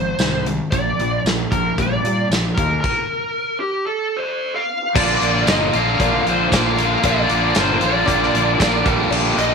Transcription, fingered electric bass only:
Already playing: G#1
0.19 C2
0.72 A#1
0.98 A#1
1.24 A#1
1.52 A#1
1.78 A#1
2.04 A#2
2.30 A#1
2.57 D#2
4.95 A#1
5.22 A#1
5.47 G1
5.75 A#1
5.99 A#1
6.26 A#1
6.52 A#1
7.04 A#1
7.30 A#1
7.56 G1
7.82 A#1
8.08 A#1
8.35 A#1
8.60 A#1
8.86 A#1
9.11 A#1
9.37 A#1

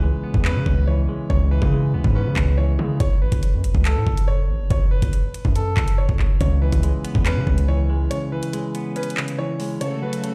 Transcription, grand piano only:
Already playing: B4
0.45 B4
0.87 C#5
1.30 C#5
1.51 B4
2.16 B4
2.58 C#5
3.00 C#5
3.22 B4
3.85 A4
4.28 C#5
4.71 C#5
4.91 B4
5.56 A4
5.98 C#5
6.41 C#5
6.62 B4
7.26 B4
7.68 C#5
8.11 C#5
8.32 B4
8.97 B4
9.39 C#5
9.81 C#5
10.03 B4

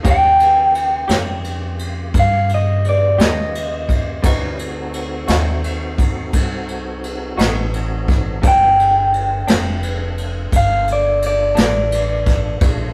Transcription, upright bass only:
0.05 D#2
1.09 F2
2.14 G2
3.18 D#2
4.24 D2
5.29 D#2
6.34 C2
7.38 A1
8.44 G1
9.48 F1
10.53 G1
11.57 A1
12.61 A#1

